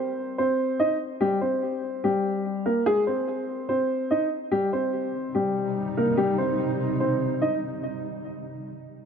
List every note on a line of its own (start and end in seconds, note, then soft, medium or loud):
0.00 0.35 C4 medium
0.00 0.35 C5 medium
0.38 0.78 C4 medium
0.38 0.77 C5 medium
0.79 0.96 D#4 medium
0.79 0.95 D#5 medium
1.21 1.37 G3 medium
1.21 1.37 G4 loud
1.41 2.00 C4 medium
1.41 2.00 C5 medium
2.04 2.63 G3 medium
2.04 2.62 G4 medium
2.66 2.82 A#3 medium
2.66 2.82 A#4 medium
2.86 3.03 G#3 medium
2.86 3.02 G#4 loud
3.07 3.66 C4 medium
3.07 3.65 C5 medium
3.69 4.08 C4 medium
3.69 4.08 C5 medium
4.11 4.27 D#4 medium
4.11 4.26 D#5 medium
4.52 7.80 C3 medium
4.52 7.80 G3 medium
4.52 4.68 G3 medium
4.52 7.80 D#4 medium
4.52 4.68 G4 loud
4.73 5.32 C4 medium
4.73 5.31 C5 medium
5.35 5.93 G3 medium
5.35 5.93 G4 medium
5.97 6.14 A#3 medium
5.97 6.13 A#4 medium
6.17 6.34 G3 medium
6.17 6.33 G4 medium
6.38 6.97 C4 medium
6.38 6.97 C5 medium
7.00 7.40 C4 medium
7.00 7.39 C5 medium
7.42 7.58 D#4 medium
7.42 7.57 D#5 medium